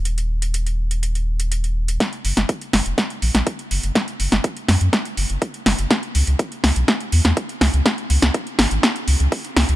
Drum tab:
HH |xx-xxx-xxx-xxx-x|xxoxxxoxxxoxxxox|xxoxxxoxxxoxxxox|xxoxxxoxxxoxxxox|
SD |----------------|o--o--o-o--o----|o--o--o-o-----o-|o-----o-o--o--o-|
BD |----------------|o---o---o---o---|o---o---o---o---|o---o---o---o---|

HH |xxoxxxoxxxoxoxox|
SD |o--o--o-o-----o-|
BD |o---o---o---o---|